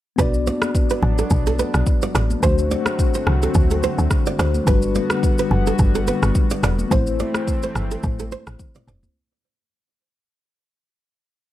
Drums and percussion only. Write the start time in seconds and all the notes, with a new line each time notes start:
0.18 kick, low conga, shaker
0.34 shaker
0.47 high conga, shaker
0.62 cross-stick, high conga, shaker
0.75 kick, shaker
0.90 shaker
1.02 low conga
1.18 shaker
1.30 kick, low conga, shaker
1.46 shaker
1.59 high conga, shaker
1.74 cross-stick, shaker
1.86 kick, shaker
2.02 shaker
2.15 cross-stick, shaker
2.30 high conga, shaker
2.43 kick, low conga, shaker
2.58 shaker
2.71 high conga, shaker
2.86 cross-stick, high conga, shaker
2.99 kick, shaker
3.14 shaker
3.27 cross-stick, low conga
3.42 shaker
3.54 kick, low conga, shaker
3.70 shaker
3.83 high conga, shaker
3.98 shaker
4.11 kick, cross-stick, shaker
4.26 shaker
4.39 cross-stick, shaker
4.54 high conga, shaker
4.67 kick, low conga, shaker
4.82 shaker
4.95 high conga, shaker
5.10 cross-stick, high conga, shaker
5.23 kick, shaker
5.38 shaker
5.51 low conga
5.66 shaker
5.79 kick, low conga, shaker
5.95 shaker
6.07 high conga, shaker
6.23 cross-stick, shaker
6.35 kick, shaker
6.50 shaker
6.63 cross-stick, shaker
6.79 high conga, shaker
6.91 kick, low conga, shaker
7.07 shaker
7.19 high conga, shaker
7.34 cross-stick, high conga, shaker
7.47 kick, shaker
7.63 shaker
7.75 cross-stick, low conga, shaker
7.91 shaker
8.03 kick, low conga, shaker
8.19 shaker
8.32 high conga, shaker
8.47 cross-stick, shaker
8.59 kick, high tom, shaker
8.75 mid tom, shaker
8.87 mid tom, high conga, shaker
9.03 floor tom, high conga, shaker